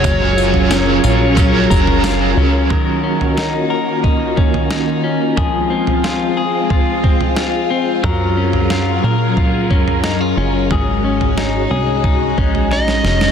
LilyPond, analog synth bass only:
\new Staff \with { instrumentName = "Analog synth bass" } { \clef bass \time 4/4 \key ges \lydian \tempo 4 = 90 ges,,4. bes,,4 ges,,4 des,8 | r1 | r1 | ges,4. bes,4 ges,4 ges,,8 |
aes,,4. c,4 bes,,4 f,,8 | }